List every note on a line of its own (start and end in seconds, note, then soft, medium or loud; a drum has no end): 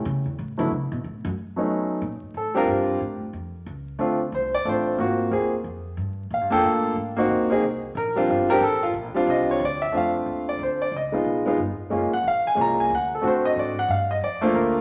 0.05 0.25 C#3 loud
0.26 0.37 E2 medium
0.39 0.58 A2 medium
0.58 0.70 D3 loud
0.58 0.69 F#3 medium
0.58 0.69 A3 medium
0.58 0.69 B3 medium
0.58 0.69 D4 medium
0.58 0.70 E4 medium
0.71 0.91 C#3 medium
0.92 1.03 B2 medium
1.04 1.24 A2 medium
1.25 1.32 F#2 loud
1.56 1.99 F#3 medium
1.56 1.99 A3 medium
1.56 2.00 B3 medium
1.56 2.00 C#4 medium
1.56 2.00 D#4 medium
2.02 2.21 A#2 medium
2.23 muted upright bass stroke soft
2.34 2.67 A2 medium
2.34 2.56 A4 medium
2.54 2.98 G3 medium
2.54 2.98 C4 medium
2.54 2.98 D4 medium
2.54 2.99 F4 medium
2.54 2.68 A#4 loud
2.67 3.00 G2 medium
2.67 3.20 G4 medium
3.01 3.20 A2 medium
3.21 muted upright bass stroke soft
3.33 3.66 F2 medium
3.66 3.98 C#2 medium
3.99 4.31 D2 medium
3.99 4.18 A3 medium
3.99 4.19 C4 medium
3.99 4.19 D4 medium
3.99 4.19 F4 medium
4.32 4.64 C2 medium
4.32 4.54 C5 medium
4.54 4.66 D5 loud
4.65 4.97 A1 medium
4.65 4.98 A3 medium
4.65 4.97 C4 medium
4.65 4.99 D4 medium
4.65 4.98 F4 medium
4.69 5.18 C5 medium
4.98 5.30 G#1 medium
4.98 5.30 A#3 medium
4.98 5.30 C4 medium
4.98 5.31 F4 medium
4.98 5.31 F#4 medium
5.31 5.64 D#2 medium
5.31 5.50 A#3 medium
5.31 5.50 C4 medium
5.31 5.51 F4 medium
5.31 5.51 G#4 medium
5.64 5.96 F2 medium
5.97 6.29 G2 loud
6.30 6.41 A#2 medium
6.30 6.53 F5 medium
6.41 6.51 G2 medium
6.50 6.63 F2 medium
6.50 6.94 A#3 medium
6.50 6.94 D4 medium
6.50 6.94 F4 medium
6.50 6.94 A4 loud
6.50 6.64 G5 medium
6.63 6.95 A2 medium
6.63 7.15 F5 medium
6.96 7.28 G#2 medium
7.17 7.48 A#3 medium
7.17 7.49 C4 medium
7.17 7.49 D#4 medium
7.17 7.49 F#4 medium
7.29 7.61 D#2 medium
7.50 7.61 A#3 medium
7.50 7.62 C4 medium
7.50 7.62 D#4 medium
7.50 7.62 G#4 medium
7.62 7.94 C2 medium
7.95 8.27 A#1 medium
7.95 8.17 A#4 medium
8.16 8.47 G3 medium
8.16 8.47 C4 medium
8.16 8.48 D4 medium
8.16 8.29 F4 loud
8.28 8.60 G1 medium
8.28 8.50 F4 medium
8.49 8.60 G3 loud
8.49 8.60 C4 medium
8.49 8.61 D4 medium
8.49 8.61 G4 loud
8.49 8.61 A#4 loud
8.61 8.93 A1 medium
8.61 8.82 A4 loud
8.83 8.90 F4 loud
8.94 9.13 A#1 medium
9.14 9.58 G3 medium
9.14 9.58 C4 medium
9.14 9.58 D4 medium
9.14 9.59 F4 loud
9.14 muted upright bass stroke soft
9.27 9.59 C2 medium
9.27 9.49 D#5 medium
9.51 9.61 C#5 medium
9.60 9.92 D2 loud
9.65 9.83 D5 medium
9.82 9.93 E5 loud
9.92 10.25 F2 medium
9.92 10.85 A3 medium
9.92 10.85 C4 medium
9.92 10.85 D4 medium
9.92 10.85 F4 medium
9.97 10.46 F5 medium
10.26 10.58 D#2 medium
10.49 10.60 D5 medium
10.59 10.91 D2 medium
10.63 10.82 C5 medium
10.82 10.93 D5 medium
10.92 11.24 C#2 medium
10.96 11.45 D#5 medium
11.12 11.44 G#3 medium
11.12 11.44 B3 medium
11.12 11.44 D#4 medium
11.12 11.45 F4 medium
11.24 11.57 B1 medium
11.46 11.57 G#3 medium
11.46 11.57 B3 medium
11.46 11.58 D#4 medium
11.46 11.58 F4 medium
11.58 11.77 G1 medium
11.79 muted upright bass stroke soft
11.90 12.11 F#1 medium
11.90 12.09 G#3 medium
11.90 12.10 A#3 medium
11.90 12.10 C#4 medium
11.90 12.11 F4 medium
12.12 12.25 F#5 loud
12.12 muted upright bass stroke soft
12.24 12.43 A#1 medium
12.24 12.46 F5 loud
12.45 12.58 G#5 loud
12.45 muted upright bass stroke soft
12.55 12.89 C2 loud
12.55 12.89 G#3 medium
12.55 12.90 A#3 medium
12.55 12.90 C#4 medium
12.55 12.90 F4 medium
12.61 12.80 A#5 loud
12.80 12.91 G#5 medium
12.90 13.22 D2 medium
12.95 13.13 F#5 medium
13.15 13.25 A4 medium
13.22 13.55 A2 medium
13.22 13.72 A3 medium
13.22 13.72 C4 medium
13.22 13.73 D4 medium
13.22 13.73 F#4 medium
13.27 13.46 C5 medium
13.45 13.56 D#5 loud
13.56 13.88 G#2 medium
13.56 13.78 D5 medium
13.79 13.90 F#5 loud
13.88 14.20 G2 medium
13.88 14.10 F5 medium
14.11 14.22 D#5 medium
14.21 14.53 F2 medium
14.21 14.43 D5 medium
14.41 14.81 A3 medium
14.41 14.81 A#3 medium
14.41 14.81 D4 medium
14.41 14.81 F4 loud
14.41 14.54 C5 medium
14.54 14.81 D2 medium
14.54 14.81 A#4 medium